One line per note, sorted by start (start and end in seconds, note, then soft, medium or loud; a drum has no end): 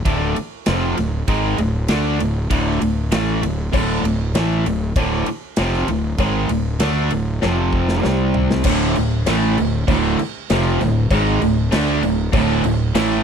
0.05 0.35 D1 medium
0.05 0.35 D2 medium
0.05 0.36 A2 medium
0.05 0.36 D3 loud
0.05 kick loud
0.05 ride loud
0.36 muted overdriven electric guitar stroke medium
0.36 muted fingered electric bass stroke soft
0.36 ride medium
0.66 0.97 F1 loud
0.66 0.97 F2 loud
0.66 0.97 C3 loud
0.66 0.97 F3 loud
0.66 snare loud
0.66 ride loud
0.97 1.27 D1 medium
0.97 1.23 D2 medium
0.97 1.23 A2 medium
0.97 snare soft
0.97 ride medium
1.28 1.57 G#1 medium
1.28 1.58 G#2 medium
1.28 1.59 D#3 loud
1.28 1.59 G#3 loud
1.28 kick medium
1.28 ride medium
1.58 1.88 D1 medium
1.58 1.84 D2 medium
1.58 1.84 A2 medium
1.58 ride medium
1.88 2.18 D2 medium
1.88 2.19 D3 loud
1.88 2.20 A3 loud
1.88 2.20 D4 loud
1.88 snare loud
1.88 ride medium
2.19 2.49 D1 medium
2.19 2.45 D2 medium
2.19 2.45 A2 medium
2.19 ride medium
2.50 2.80 D1 loud
2.50 2.80 D2 loud
2.50 2.80 A2 medium
2.50 2.81 D3 loud
2.50 kick loud
2.50 ride loud
2.81 3.11 D1 medium
2.81 3.07 D2 medium
2.81 3.07 A2 medium
2.81 ride medium
3.12 3.42 A1 medium
3.12 3.42 A2 loud
3.12 3.43 E3 loud
3.12 3.43 A3 loud
3.12 snare loud
3.12 ride loud
3.42 3.72 D1 medium
3.42 3.68 D2 medium
3.42 3.68 A2 medium
3.42 ride medium
3.72 4.03 D1 medium
3.72 4.03 D2 loud
3.72 4.04 A2 loud
3.72 4.04 D3 loud
3.72 kick loud
3.72 cowbell loud
3.72 crash medium
4.04 4.33 D1 medium
4.04 4.30 D2 medium
4.04 4.30 A2 medium
4.04 ride medium
4.33 4.63 A1 medium
4.33 4.65 A2 medium
4.33 4.66 E3 loud
4.33 4.66 A3 loud
4.33 snare loud
4.33 ride loud
4.33 cowbell medium
4.65 4.95 D1 medium
4.65 4.91 D2 medium
4.65 4.92 A2 medium
4.65 ride medium
4.96 5.25 D1 medium
4.96 5.27 D2 medium
4.96 5.27 A2 loud
4.96 5.27 D3 loud
4.96 kick loud
4.96 ride loud
4.96 cowbell loud
5.26 muted fingered electric bass stroke soft
5.26 muted overdriven electric guitar stroke medium
5.26 ride medium
5.56 5.87 F1 medium
5.56 5.88 F2 medium
5.56 5.88 C3 medium
5.56 5.89 F3 loud
5.56 snare loud
5.56 ride medium
5.56 cowbell medium
5.73 snare soft
5.88 6.18 D1 medium
5.88 6.14 D2 medium
5.88 6.14 A2 medium
5.88 ride medium
6.18 6.48 G#1 medium
6.18 6.49 G#2 medium
6.18 6.50 D#3 medium
6.18 6.50 G#3 loud
6.18 kick loud
6.18 ride medium
6.18 cowbell loud
6.49 6.79 D1 medium
6.49 6.75 D2 medium
6.49 6.75 A2 medium
6.49 ride medium
6.80 7.10 D2 medium
6.80 7.10 D3 medium
6.80 7.11 A3 medium
6.80 7.11 D4 loud
6.80 snare loud
6.80 ride medium
6.80 cowbell medium
7.11 7.41 D1 medium
7.11 7.36 D2 medium
7.11 7.36 A2 medium
7.11 ride medium
7.42 8.00 F1 loud
7.42 8.04 F2 medium
7.42 8.04 C3 medium
7.42 8.05 F3 loud
7.42 snare medium
7.42 cowbell loud
7.73 kick medium
7.89 snare medium
8.03 8.62 C2 loud
8.03 8.64 C3 loud
8.03 8.65 G3 loud
8.03 8.65 C4 loud
8.03 snare medium
8.03 cowbell medium
8.34 floor tom medium
8.51 snare medium
8.64 8.94 D1 medium
8.64 8.95 D2 loud
8.64 8.95 A2 loud
8.64 8.95 D3 loud
8.64 kick loud
8.64 crash loud
8.64 cowbell medium
8.64 crash medium
8.96 9.26 D1 medium
8.96 9.20 D2 medium
8.96 9.21 A2 medium
8.96 crash medium
9.26 9.56 A1 loud
9.26 9.57 A2 loud
9.26 9.57 E3 medium
9.26 9.57 A3 loud
9.26 snare loud
9.26 cowbell medium
9.26 crash medium
9.58 9.87 D1 medium
9.58 9.82 D2 medium
9.58 9.83 A2 medium
9.58 crash medium
9.88 10.17 D1 medium
9.88 10.18 D2 loud
9.88 10.18 A2 loud
9.88 10.18 D3 loud
9.88 kick loud
9.88 cowbell loud
9.88 crash medium
10.19 muted overdriven electric guitar stroke medium
10.19 muted fingered electric bass stroke soft
10.19 crash medium
10.50 10.78 F1 medium
10.50 10.80 F2 loud
10.50 10.80 C3 loud
10.50 10.80 F3 loud
10.50 snare loud
10.50 cowbell medium
10.50 crash medium
10.81 11.09 D1 medium
10.81 11.05 D2 medium
10.81 11.05 A2 medium
10.81 snare soft
10.81 crash medium
11.11 11.39 G#1 medium
11.11 11.41 G#2 medium
11.11 11.41 D#3 medium
11.11 11.41 G#3 medium
11.11 kick loud
11.11 cowbell loud
11.11 crash medium
11.41 11.70 D1 medium
11.41 11.66 D2 medium
11.41 11.66 A2 medium
11.41 crash medium
11.72 12.01 D2 loud
11.72 12.02 D3 loud
11.72 12.02 A3 loud
11.72 12.02 D4 loud
11.72 snare loud
11.72 cowbell medium
11.72 crash medium
12.02 12.32 D1 medium
12.02 12.27 D2 medium
12.02 12.27 A2 medium
12.02 crash medium
12.32 12.62 D1 loud
12.32 12.63 D2 loud
12.32 12.63 A2 loud
12.32 12.63 D3 loud
12.32 kick loud
12.32 cowbell loud
12.32 crash medium
12.64 12.93 D1 medium
12.64 12.89 D2 medium
12.64 12.89 A2 medium
12.64 crash medium
12.95 13.23 A1 loud
12.95 13.23 A2 loud
12.95 13.23 E3 loud
12.95 13.23 A3 loud
12.95 snare loud
12.95 cowbell medium
12.95 crash medium